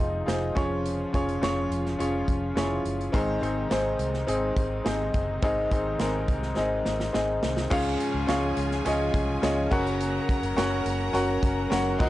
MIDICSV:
0, 0, Header, 1, 6, 480
1, 0, Start_track
1, 0, Key_signature, -5, "major"
1, 0, Tempo, 571973
1, 713, Time_signature, 4, 2, 24, 8
1, 10148, End_track
2, 0, Start_track
2, 0, Title_t, "Violin section"
2, 0, Program_c, 0, 48
2, 6472, Note_on_c, 0, 80, 90
2, 6473, Note_on_c, 0, 68, 88
2, 8118, Note_off_c, 0, 68, 0
2, 8118, Note_off_c, 0, 80, 0
2, 8155, Note_on_c, 0, 70, 83
2, 8158, Note_on_c, 0, 82, 96
2, 10038, Note_off_c, 0, 70, 0
2, 10039, Note_off_c, 0, 82, 0
2, 10076, Note_on_c, 0, 72, 82
2, 10078, Note_on_c, 0, 84, 92
2, 10148, Note_off_c, 0, 72, 0
2, 10148, Note_off_c, 0, 84, 0
2, 10148, End_track
3, 0, Start_track
3, 0, Title_t, "Upright piano"
3, 0, Program_c, 1, 0
3, 0, Control_c, 1, 64, 127
3, 0, Note_on_c, 1, 48, 65
3, 0, Note_on_c, 1, 63, 75
3, 0, Note_on_c, 1, 65, 70
3, 0, Note_on_c, 1, 68, 69
3, 0, Note_on_c, 1, 72, 86
3, 0, Note_on_c, 1, 75, 82
3, 117, Note_off_c, 1, 63, 0
3, 120, Note_off_c, 1, 65, 0
3, 123, Note_off_c, 1, 68, 0
3, 125, Note_off_c, 1, 75, 0
3, 218, Note_on_c, 1, 63, 70
3, 222, Note_on_c, 1, 65, 65
3, 230, Note_on_c, 1, 68, 63
3, 236, Note_off_c, 1, 72, 0
3, 236, Note_on_c, 1, 72, 80
3, 455, Note_off_c, 1, 65, 0
3, 460, Note_off_c, 1, 68, 0
3, 463, Note_on_c, 1, 61, 84
3, 466, Note_off_c, 1, 63, 0
3, 467, Note_on_c, 1, 65, 69
3, 468, Note_on_c, 1, 53, 68
3, 473, Note_on_c, 1, 68, 69
3, 475, Note_off_c, 1, 72, 0
3, 476, Note_on_c, 1, 73, 88
3, 485, Control_c, 1, 64, 0
3, 492, Note_off_c, 1, 48, 0
3, 627, Control_c, 1, 64, 127
3, 852, Note_off_c, 1, 61, 0
3, 854, Note_off_c, 1, 65, 0
3, 857, Note_off_c, 1, 68, 0
3, 859, Note_off_c, 1, 73, 0
3, 946, Note_on_c, 1, 61, 69
3, 950, Note_on_c, 1, 65, 64
3, 958, Note_on_c, 1, 68, 64
3, 963, Note_on_c, 1, 73, 81
3, 1134, Note_off_c, 1, 61, 0
3, 1136, Note_off_c, 1, 65, 0
3, 1140, Note_off_c, 1, 68, 0
3, 1142, Note_off_c, 1, 73, 0
3, 1157, Note_off_c, 1, 53, 0
3, 1188, Note_on_c, 1, 61, 76
3, 1194, Note_on_c, 1, 65, 72
3, 1197, Note_on_c, 1, 68, 67
3, 1204, Note_on_c, 1, 73, 89
3, 1559, Note_off_c, 1, 61, 0
3, 1562, Note_off_c, 1, 65, 0
3, 1563, Note_off_c, 1, 68, 0
3, 1567, Note_off_c, 1, 73, 0
3, 1667, Note_on_c, 1, 61, 78
3, 1671, Note_on_c, 1, 65, 76
3, 1676, Note_on_c, 1, 68, 68
3, 1682, Note_on_c, 1, 73, 86
3, 2038, Note_off_c, 1, 61, 0
3, 2040, Note_off_c, 1, 65, 0
3, 2043, Note_off_c, 1, 68, 0
3, 2046, Note_off_c, 1, 73, 0
3, 2144, Note_on_c, 1, 61, 71
3, 2148, Note_on_c, 1, 64, 54
3, 2155, Note_on_c, 1, 68, 69
3, 2160, Note_on_c, 1, 73, 82
3, 2204, Note_on_c, 1, 65, 66
3, 2206, Note_off_c, 1, 64, 0
3, 2517, Note_off_c, 1, 61, 0
3, 2523, Note_off_c, 1, 68, 0
3, 2525, Note_off_c, 1, 73, 0
3, 2547, Note_off_c, 1, 65, 0
3, 2621, Note_on_c, 1, 60, 93
3, 2627, Note_on_c, 1, 63, 90
3, 2629, Note_on_c, 1, 44, 65
3, 2630, Note_on_c, 1, 68, 90
3, 2631, Note_on_c, 1, 51, 69
3, 2637, Note_on_c, 1, 72, 117
3, 2642, Control_c, 1, 64, 0
3, 2802, Control_c, 1, 64, 127
3, 2811, Note_off_c, 1, 60, 0
3, 2814, Note_off_c, 1, 63, 0
3, 2816, Note_off_c, 1, 68, 0
3, 2819, Note_off_c, 1, 72, 0
3, 2860, Note_on_c, 1, 60, 72
3, 2864, Note_on_c, 1, 63, 66
3, 2872, Note_on_c, 1, 68, 64
3, 2877, Note_on_c, 1, 72, 81
3, 3051, Note_off_c, 1, 60, 0
3, 3053, Note_off_c, 1, 63, 0
3, 3057, Note_off_c, 1, 68, 0
3, 3059, Note_off_c, 1, 72, 0
3, 3105, Note_on_c, 1, 60, 81
3, 3111, Note_on_c, 1, 63, 69
3, 3117, Note_on_c, 1, 68, 74
3, 3122, Note_on_c, 1, 72, 90
3, 3318, Note_off_c, 1, 44, 0
3, 3319, Note_off_c, 1, 51, 0
3, 3477, Note_off_c, 1, 60, 0
3, 3480, Note_off_c, 1, 63, 0
3, 3483, Note_off_c, 1, 68, 0
3, 3486, Note_off_c, 1, 72, 0
3, 3581, Note_on_c, 1, 60, 84
3, 3586, Note_on_c, 1, 63, 75
3, 3590, Note_on_c, 1, 68, 76
3, 3598, Note_on_c, 1, 75, 82
3, 3955, Note_off_c, 1, 60, 0
3, 3958, Note_off_c, 1, 63, 0
3, 3960, Note_off_c, 1, 68, 0
3, 3964, Note_off_c, 1, 75, 0
3, 4065, Note_on_c, 1, 60, 72
3, 4068, Note_on_c, 1, 63, 66
3, 4074, Note_on_c, 1, 68, 72
3, 4081, Note_on_c, 1, 72, 81
3, 4437, Note_off_c, 1, 60, 0
3, 4439, Note_off_c, 1, 63, 0
3, 4442, Note_off_c, 1, 68, 0
3, 4445, Note_off_c, 1, 72, 0
3, 4551, Note_on_c, 1, 60, 99
3, 4553, Note_on_c, 1, 63, 92
3, 4555, Note_on_c, 1, 44, 69
3, 4559, Note_on_c, 1, 51, 65
3, 4560, Note_on_c, 1, 68, 97
3, 4565, Note_on_c, 1, 75, 116
3, 4736, Note_off_c, 1, 60, 0
3, 4737, Note_off_c, 1, 63, 0
3, 4741, Note_off_c, 1, 68, 0
3, 4743, Note_off_c, 1, 75, 0
3, 4787, Note_on_c, 1, 60, 73
3, 4792, Note_on_c, 1, 63, 72
3, 4799, Note_on_c, 1, 68, 66
3, 4804, Note_on_c, 1, 72, 83
3, 4974, Note_off_c, 1, 60, 0
3, 4977, Note_off_c, 1, 63, 0
3, 4980, Note_off_c, 1, 68, 0
3, 4983, Note_off_c, 1, 72, 0
3, 5024, Note_on_c, 1, 60, 80
3, 5032, Note_on_c, 1, 63, 73
3, 5036, Note_on_c, 1, 68, 75
3, 5044, Note_on_c, 1, 70, 84
3, 5241, Note_off_c, 1, 44, 0
3, 5243, Note_off_c, 1, 51, 0
3, 5397, Note_off_c, 1, 60, 0
3, 5401, Note_off_c, 1, 63, 0
3, 5403, Note_off_c, 1, 68, 0
3, 5407, Note_off_c, 1, 70, 0
3, 5501, Note_on_c, 1, 60, 79
3, 5510, Note_on_c, 1, 63, 74
3, 5511, Note_on_c, 1, 68, 74
3, 5516, Note_on_c, 1, 75, 92
3, 5875, Note_off_c, 1, 60, 0
3, 5879, Note_off_c, 1, 63, 0
3, 5880, Note_off_c, 1, 68, 0
3, 5883, Note_off_c, 1, 75, 0
3, 5979, Note_on_c, 1, 60, 74
3, 5984, Note_on_c, 1, 63, 68
3, 5988, Note_on_c, 1, 68, 69
3, 5995, Note_on_c, 1, 75, 81
3, 6354, Note_off_c, 1, 60, 0
3, 6356, Note_off_c, 1, 63, 0
3, 6359, Note_off_c, 1, 68, 0
3, 6362, Note_off_c, 1, 75, 0
3, 6464, Note_on_c, 1, 61, 110
3, 6470, Note_on_c, 1, 65, 105
3, 6472, Note_on_c, 1, 68, 100
3, 6473, Note_on_c, 1, 44, 72
3, 6477, Note_on_c, 1, 73, 101
3, 6480, Note_on_c, 1, 77, 124
3, 6483, Control_c, 1, 64, 0
3, 6620, Control_c, 1, 64, 127
3, 6836, Note_off_c, 1, 61, 0
3, 6839, Note_off_c, 1, 65, 0
3, 6840, Note_off_c, 1, 68, 0
3, 6842, Note_off_c, 1, 73, 0
3, 6844, Note_off_c, 1, 77, 0
3, 6942, Note_on_c, 1, 61, 86
3, 6945, Note_on_c, 1, 65, 79
3, 6947, Note_on_c, 1, 68, 86
3, 6954, Note_on_c, 1, 73, 85
3, 6958, Note_on_c, 1, 77, 106
3, 7159, Note_off_c, 1, 44, 0
3, 7315, Note_off_c, 1, 61, 0
3, 7317, Note_off_c, 1, 65, 0
3, 7317, Note_off_c, 1, 68, 0
3, 7321, Note_off_c, 1, 73, 0
3, 7323, Note_off_c, 1, 77, 0
3, 7426, Note_on_c, 1, 61, 92
3, 7432, Note_on_c, 1, 65, 84
3, 7434, Note_on_c, 1, 68, 83
3, 7440, Note_on_c, 1, 73, 82
3, 7444, Note_on_c, 1, 75, 102
3, 7797, Note_off_c, 1, 61, 0
3, 7800, Note_off_c, 1, 65, 0
3, 7801, Note_off_c, 1, 68, 0
3, 7804, Note_off_c, 1, 73, 0
3, 7806, Note_off_c, 1, 75, 0
3, 7904, Note_on_c, 1, 61, 89
3, 7912, Note_on_c, 1, 65, 82
3, 7914, Note_on_c, 1, 68, 77
3, 7918, Note_on_c, 1, 73, 78
3, 7923, Note_on_c, 1, 75, 93
3, 8134, Note_off_c, 1, 61, 0
3, 8146, Note_off_c, 1, 73, 0
3, 8147, Note_on_c, 1, 61, 94
3, 8150, Note_on_c, 1, 66, 86
3, 8151, Note_off_c, 1, 65, 0
3, 8152, Note_on_c, 1, 70, 86
3, 8153, Note_off_c, 1, 68, 0
3, 8154, Note_on_c, 1, 49, 79
3, 8157, Note_off_c, 1, 75, 0
3, 8159, Note_on_c, 1, 73, 88
3, 8162, Control_c, 1, 64, 0
3, 8162, Note_on_c, 1, 78, 109
3, 8334, Control_c, 1, 64, 127
3, 8725, Note_off_c, 1, 61, 0
3, 8726, Note_off_c, 1, 66, 0
3, 8728, Note_off_c, 1, 70, 0
3, 8731, Note_off_c, 1, 73, 0
3, 8732, Note_off_c, 1, 78, 0
3, 8839, Note_off_c, 1, 49, 0
3, 8866, Note_on_c, 1, 61, 97
3, 8869, Note_on_c, 1, 66, 83
3, 8874, Note_on_c, 1, 70, 79
3, 8875, Note_on_c, 1, 73, 85
3, 8883, Note_on_c, 1, 78, 105
3, 9236, Note_off_c, 1, 61, 0
3, 9238, Note_off_c, 1, 66, 0
3, 9240, Note_off_c, 1, 70, 0
3, 9241, Note_off_c, 1, 73, 0
3, 9245, Note_off_c, 1, 78, 0
3, 9342, Note_on_c, 1, 61, 95
3, 9346, Note_on_c, 1, 66, 85
3, 9348, Note_on_c, 1, 70, 88
3, 9353, Note_on_c, 1, 73, 82
3, 9359, Note_on_c, 1, 78, 100
3, 9714, Note_off_c, 1, 61, 0
3, 9716, Note_off_c, 1, 66, 0
3, 9717, Note_off_c, 1, 70, 0
3, 9719, Note_off_c, 1, 73, 0
3, 9722, Note_off_c, 1, 78, 0
3, 9819, Note_on_c, 1, 61, 82
3, 9825, Note_on_c, 1, 66, 77
3, 9828, Note_on_c, 1, 70, 80
3, 9834, Note_on_c, 1, 73, 78
3, 9837, Note_on_c, 1, 78, 92
3, 10050, Note_off_c, 1, 66, 0
3, 10056, Note_off_c, 1, 70, 0
3, 10059, Note_on_c, 1, 63, 93
3, 10063, Note_on_c, 1, 66, 84
3, 10064, Note_off_c, 1, 61, 0
3, 10066, Note_off_c, 1, 78, 0
3, 10068, Note_on_c, 1, 46, 77
3, 10069, Note_on_c, 1, 70, 88
3, 10072, Note_off_c, 1, 73, 0
3, 10073, Note_on_c, 1, 75, 88
3, 10079, Control_c, 1, 64, 0
3, 10079, Note_on_c, 1, 78, 105
3, 10148, Note_off_c, 1, 46, 0
3, 10148, Note_off_c, 1, 63, 0
3, 10148, Note_off_c, 1, 66, 0
3, 10148, Note_off_c, 1, 70, 0
3, 10148, Note_off_c, 1, 75, 0
3, 10148, Note_off_c, 1, 78, 0
3, 10148, End_track
4, 0, Start_track
4, 0, Title_t, "Analog synth pad"
4, 0, Program_c, 2, 89
4, 0, Note_on_c, 2, 48, 72
4, 0, Note_on_c, 2, 53, 72
4, 0, Note_on_c, 2, 56, 65
4, 0, Note_on_c, 2, 63, 83
4, 452, Note_off_c, 2, 48, 0
4, 454, Note_off_c, 2, 53, 0
4, 454, Note_off_c, 2, 63, 0
4, 479, Note_on_c, 2, 49, 83
4, 485, Note_on_c, 2, 53, 74
4, 485, Note_on_c, 2, 65, 85
4, 2603, Note_off_c, 2, 56, 0
4, 2615, Note_off_c, 2, 49, 0
4, 2618, Note_off_c, 2, 53, 0
4, 2618, Note_off_c, 2, 65, 0
4, 2630, Note_on_c, 2, 63, 86
4, 2631, Note_on_c, 2, 48, 76
4, 2632, Note_on_c, 2, 56, 76
4, 2633, Note_on_c, 2, 51, 70
4, 6438, Note_off_c, 2, 48, 0
4, 6438, Note_off_c, 2, 63, 0
4, 6439, Note_off_c, 2, 51, 0
4, 6439, Note_off_c, 2, 56, 0
4, 6467, Note_on_c, 2, 49, 89
4, 6468, Note_on_c, 2, 53, 76
4, 6469, Note_on_c, 2, 56, 77
4, 6470, Note_on_c, 2, 65, 89
4, 8133, Note_off_c, 2, 53, 0
4, 8133, Note_off_c, 2, 56, 0
4, 8133, Note_off_c, 2, 65, 0
4, 8145, Note_on_c, 2, 54, 79
4, 8146, Note_on_c, 2, 58, 76
4, 8149, Note_on_c, 2, 66, 98
4, 10033, Note_off_c, 2, 49, 0
4, 10049, Note_off_c, 2, 66, 0
4, 10071, Note_on_c, 2, 51, 92
4, 10071, Note_on_c, 2, 66, 91
4, 10148, Note_off_c, 2, 51, 0
4, 10148, Note_off_c, 2, 54, 0
4, 10148, Note_off_c, 2, 58, 0
4, 10148, Note_off_c, 2, 66, 0
4, 10148, End_track
5, 0, Start_track
5, 0, Title_t, "Fingered electric bass"
5, 0, Program_c, 3, 33
5, 0, Note_on_c, 3, 29, 85
5, 190, Note_off_c, 3, 29, 0
5, 233, Note_on_c, 3, 29, 90
5, 430, Note_off_c, 3, 29, 0
5, 475, Note_on_c, 3, 29, 88
5, 868, Note_off_c, 3, 29, 0
5, 957, Note_on_c, 3, 29, 91
5, 1153, Note_off_c, 3, 29, 0
5, 1192, Note_on_c, 3, 29, 97
5, 1389, Note_off_c, 3, 29, 0
5, 1430, Note_on_c, 3, 29, 88
5, 1628, Note_off_c, 3, 29, 0
5, 1674, Note_on_c, 3, 29, 92
5, 1871, Note_off_c, 3, 29, 0
5, 1913, Note_on_c, 3, 29, 86
5, 2110, Note_off_c, 3, 29, 0
5, 2150, Note_on_c, 3, 29, 96
5, 2348, Note_off_c, 3, 29, 0
5, 2391, Note_on_c, 3, 30, 84
5, 2589, Note_off_c, 3, 30, 0
5, 2634, Note_on_c, 3, 32, 92
5, 2831, Note_off_c, 3, 32, 0
5, 2869, Note_on_c, 3, 32, 92
5, 3068, Note_off_c, 3, 32, 0
5, 3110, Note_on_c, 3, 32, 83
5, 3308, Note_off_c, 3, 32, 0
5, 3351, Note_on_c, 3, 36, 86
5, 3549, Note_off_c, 3, 36, 0
5, 3591, Note_on_c, 3, 32, 92
5, 3789, Note_off_c, 3, 32, 0
5, 3831, Note_on_c, 3, 32, 87
5, 4029, Note_off_c, 3, 32, 0
5, 4073, Note_on_c, 3, 32, 96
5, 4270, Note_off_c, 3, 32, 0
5, 4316, Note_on_c, 3, 30, 89
5, 4512, Note_off_c, 3, 30, 0
5, 4555, Note_on_c, 3, 32, 105
5, 4751, Note_off_c, 3, 32, 0
5, 4796, Note_on_c, 3, 32, 98
5, 4992, Note_off_c, 3, 32, 0
5, 5037, Note_on_c, 3, 32, 94
5, 5232, Note_off_c, 3, 32, 0
5, 5274, Note_on_c, 3, 36, 90
5, 5471, Note_off_c, 3, 36, 0
5, 5514, Note_on_c, 3, 32, 106
5, 5711, Note_off_c, 3, 32, 0
5, 5757, Note_on_c, 3, 32, 81
5, 5952, Note_off_c, 3, 32, 0
5, 5997, Note_on_c, 3, 32, 95
5, 6192, Note_off_c, 3, 32, 0
5, 6235, Note_on_c, 3, 36, 92
5, 6431, Note_off_c, 3, 36, 0
5, 6831, Note_on_c, 3, 37, 96
5, 6930, Note_off_c, 3, 37, 0
5, 6951, Note_on_c, 3, 37, 103
5, 7148, Note_off_c, 3, 37, 0
5, 7193, Note_on_c, 3, 37, 104
5, 7389, Note_off_c, 3, 37, 0
5, 7435, Note_on_c, 3, 37, 115
5, 7631, Note_off_c, 3, 37, 0
5, 7667, Note_on_c, 3, 36, 90
5, 7866, Note_off_c, 3, 36, 0
5, 7912, Note_on_c, 3, 37, 103
5, 8108, Note_off_c, 3, 37, 0
5, 8747, Note_on_c, 3, 30, 99
5, 8847, Note_off_c, 3, 30, 0
5, 8868, Note_on_c, 3, 30, 109
5, 9066, Note_off_c, 3, 30, 0
5, 9109, Note_on_c, 3, 30, 117
5, 9306, Note_off_c, 3, 30, 0
5, 9345, Note_on_c, 3, 30, 106
5, 9544, Note_off_c, 3, 30, 0
5, 9589, Note_on_c, 3, 30, 99
5, 9786, Note_off_c, 3, 30, 0
5, 9826, Note_on_c, 3, 30, 103
5, 10024, Note_off_c, 3, 30, 0
5, 10073, Note_on_c, 3, 39, 107
5, 10148, Note_off_c, 3, 39, 0
5, 10148, End_track
6, 0, Start_track
6, 0, Title_t, "Drums"
6, 0, Note_on_c, 9, 42, 62
6, 82, Note_off_c, 9, 42, 0
6, 236, Note_on_c, 9, 38, 106
6, 238, Note_on_c, 9, 42, 85
6, 320, Note_off_c, 9, 38, 0
6, 322, Note_off_c, 9, 42, 0
6, 475, Note_on_c, 9, 36, 97
6, 477, Note_on_c, 9, 42, 65
6, 559, Note_off_c, 9, 36, 0
6, 561, Note_off_c, 9, 42, 0
6, 718, Note_on_c, 9, 42, 81
6, 802, Note_off_c, 9, 42, 0
6, 958, Note_on_c, 9, 36, 82
6, 960, Note_on_c, 9, 42, 68
6, 1042, Note_off_c, 9, 36, 0
6, 1044, Note_off_c, 9, 42, 0
6, 1080, Note_on_c, 9, 42, 53
6, 1164, Note_off_c, 9, 42, 0
6, 1199, Note_on_c, 9, 42, 90
6, 1200, Note_on_c, 9, 38, 104
6, 1283, Note_off_c, 9, 42, 0
6, 1284, Note_off_c, 9, 38, 0
6, 1441, Note_on_c, 9, 42, 73
6, 1525, Note_off_c, 9, 42, 0
6, 1561, Note_on_c, 9, 38, 32
6, 1645, Note_off_c, 9, 38, 0
6, 1682, Note_on_c, 9, 42, 83
6, 1766, Note_off_c, 9, 42, 0
6, 1914, Note_on_c, 9, 36, 80
6, 1918, Note_on_c, 9, 42, 68
6, 1998, Note_off_c, 9, 36, 0
6, 2002, Note_off_c, 9, 42, 0
6, 2156, Note_on_c, 9, 38, 108
6, 2159, Note_on_c, 9, 42, 96
6, 2240, Note_off_c, 9, 38, 0
6, 2243, Note_off_c, 9, 42, 0
6, 2396, Note_on_c, 9, 42, 67
6, 2480, Note_off_c, 9, 42, 0
6, 2524, Note_on_c, 9, 42, 44
6, 2608, Note_off_c, 9, 42, 0
6, 2635, Note_on_c, 9, 36, 109
6, 2639, Note_on_c, 9, 42, 84
6, 2719, Note_off_c, 9, 36, 0
6, 2722, Note_off_c, 9, 42, 0
6, 2880, Note_on_c, 9, 42, 70
6, 2964, Note_off_c, 9, 42, 0
6, 3113, Note_on_c, 9, 42, 87
6, 3115, Note_on_c, 9, 38, 100
6, 3197, Note_off_c, 9, 42, 0
6, 3198, Note_off_c, 9, 38, 0
6, 3351, Note_on_c, 9, 42, 74
6, 3435, Note_off_c, 9, 42, 0
6, 3474, Note_on_c, 9, 38, 32
6, 3558, Note_off_c, 9, 38, 0
6, 3595, Note_on_c, 9, 42, 90
6, 3679, Note_off_c, 9, 42, 0
6, 3831, Note_on_c, 9, 36, 81
6, 3834, Note_on_c, 9, 42, 69
6, 3915, Note_off_c, 9, 36, 0
6, 3918, Note_off_c, 9, 42, 0
6, 4077, Note_on_c, 9, 38, 110
6, 4079, Note_on_c, 9, 42, 92
6, 4161, Note_off_c, 9, 38, 0
6, 4163, Note_off_c, 9, 42, 0
6, 4313, Note_on_c, 9, 42, 70
6, 4316, Note_on_c, 9, 36, 87
6, 4397, Note_off_c, 9, 42, 0
6, 4400, Note_off_c, 9, 36, 0
6, 4551, Note_on_c, 9, 42, 84
6, 4554, Note_on_c, 9, 36, 113
6, 4635, Note_off_c, 9, 42, 0
6, 4637, Note_off_c, 9, 36, 0
6, 4796, Note_on_c, 9, 36, 83
6, 4799, Note_on_c, 9, 42, 71
6, 4880, Note_off_c, 9, 36, 0
6, 4883, Note_off_c, 9, 42, 0
6, 5031, Note_on_c, 9, 42, 89
6, 5033, Note_on_c, 9, 38, 109
6, 5115, Note_off_c, 9, 42, 0
6, 5117, Note_off_c, 9, 38, 0
6, 5272, Note_on_c, 9, 42, 74
6, 5273, Note_on_c, 9, 36, 77
6, 5356, Note_off_c, 9, 42, 0
6, 5357, Note_off_c, 9, 36, 0
6, 5393, Note_on_c, 9, 38, 33
6, 5477, Note_off_c, 9, 38, 0
6, 5510, Note_on_c, 9, 38, 53
6, 5594, Note_off_c, 9, 38, 0
6, 5753, Note_on_c, 9, 38, 64
6, 5837, Note_off_c, 9, 38, 0
6, 5876, Note_on_c, 9, 38, 63
6, 5960, Note_off_c, 9, 38, 0
6, 5995, Note_on_c, 9, 38, 81
6, 6079, Note_off_c, 9, 38, 0
6, 6233, Note_on_c, 9, 38, 97
6, 6317, Note_off_c, 9, 38, 0
6, 6352, Note_on_c, 9, 38, 83
6, 6436, Note_off_c, 9, 38, 0
6, 6474, Note_on_c, 9, 36, 118
6, 6476, Note_on_c, 9, 49, 115
6, 6558, Note_off_c, 9, 36, 0
6, 6560, Note_off_c, 9, 49, 0
6, 6717, Note_on_c, 9, 42, 84
6, 6800, Note_off_c, 9, 42, 0
6, 6953, Note_on_c, 9, 42, 95
6, 6955, Note_on_c, 9, 38, 119
6, 7037, Note_off_c, 9, 42, 0
6, 7038, Note_off_c, 9, 38, 0
6, 7190, Note_on_c, 9, 42, 84
6, 7274, Note_off_c, 9, 42, 0
6, 7313, Note_on_c, 9, 38, 38
6, 7397, Note_off_c, 9, 38, 0
6, 7433, Note_on_c, 9, 42, 104
6, 7517, Note_off_c, 9, 42, 0
6, 7670, Note_on_c, 9, 36, 92
6, 7673, Note_on_c, 9, 42, 79
6, 7754, Note_off_c, 9, 36, 0
6, 7757, Note_off_c, 9, 42, 0
6, 7915, Note_on_c, 9, 38, 127
6, 7918, Note_on_c, 9, 42, 111
6, 7999, Note_off_c, 9, 38, 0
6, 8002, Note_off_c, 9, 42, 0
6, 8154, Note_on_c, 9, 36, 113
6, 8157, Note_on_c, 9, 57, 77
6, 8238, Note_off_c, 9, 36, 0
6, 8241, Note_off_c, 9, 57, 0
6, 8281, Note_on_c, 9, 42, 53
6, 8365, Note_off_c, 9, 42, 0
6, 8397, Note_on_c, 9, 42, 100
6, 8481, Note_off_c, 9, 42, 0
6, 8636, Note_on_c, 9, 36, 92
6, 8639, Note_on_c, 9, 42, 78
6, 8720, Note_off_c, 9, 36, 0
6, 8723, Note_off_c, 9, 42, 0
6, 8755, Note_on_c, 9, 42, 62
6, 8839, Note_off_c, 9, 42, 0
6, 8877, Note_on_c, 9, 42, 97
6, 8879, Note_on_c, 9, 38, 122
6, 8961, Note_off_c, 9, 42, 0
6, 8963, Note_off_c, 9, 38, 0
6, 9113, Note_on_c, 9, 42, 80
6, 9197, Note_off_c, 9, 42, 0
6, 9354, Note_on_c, 9, 42, 94
6, 9438, Note_off_c, 9, 42, 0
6, 9590, Note_on_c, 9, 36, 92
6, 9593, Note_on_c, 9, 42, 80
6, 9674, Note_off_c, 9, 36, 0
6, 9677, Note_off_c, 9, 42, 0
6, 9833, Note_on_c, 9, 38, 122
6, 9836, Note_on_c, 9, 42, 113
6, 9917, Note_off_c, 9, 38, 0
6, 9920, Note_off_c, 9, 42, 0
6, 10071, Note_on_c, 9, 57, 78
6, 10072, Note_on_c, 9, 36, 117
6, 10148, Note_off_c, 9, 36, 0
6, 10148, Note_off_c, 9, 57, 0
6, 10148, End_track
0, 0, End_of_file